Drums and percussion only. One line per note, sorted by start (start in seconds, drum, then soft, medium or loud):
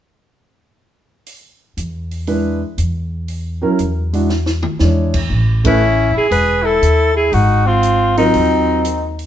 1.26 open hi-hat soft
1.77 closed hi-hat soft
2.11 open hi-hat soft
2.27 open hi-hat soft
2.78 closed hi-hat soft
3.28 open hi-hat soft
3.79 closed hi-hat soft
4.13 open hi-hat soft
4.29 snare soft
4.46 snare soft
4.63 mid tom medium
4.79 snare soft
5.14 kick medium
5.14 crash medium
5.65 kick medium
5.65 ride medium
6.31 open hi-hat soft
6.83 closed hi-hat soft
7.33 open hi-hat soft
7.83 closed hi-hat soft
8.17 open hi-hat soft
8.34 open hi-hat soft
8.85 closed hi-hat soft
9.19 open hi-hat soft